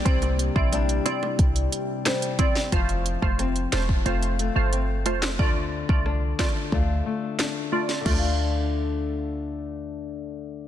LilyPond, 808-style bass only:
\new Staff \with { instrumentName = "808-style bass" } { \clef bass \time 4/4 \key d \minor \tempo 4 = 90 c,8. bes,,8. r8 c,8 r4. | f,,8. f,,8. e,,8 f,,8. g,,8. f,,8 | d,8. c,8. r8 d,8 r4. | d,1 | }